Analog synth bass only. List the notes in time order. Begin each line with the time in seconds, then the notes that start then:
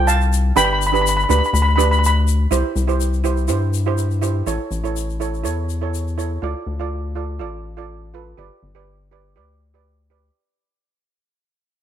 Already playing: C2
0.56 G1
1.30 D2
1.53 D2
2.51 C2
2.76 C2
3.49 G2
4.47 A1
4.71 A1
5.44 E2
6.42 D2
6.67 D2
7.40 A1
8.38 G1
8.63 G1
9.36 D2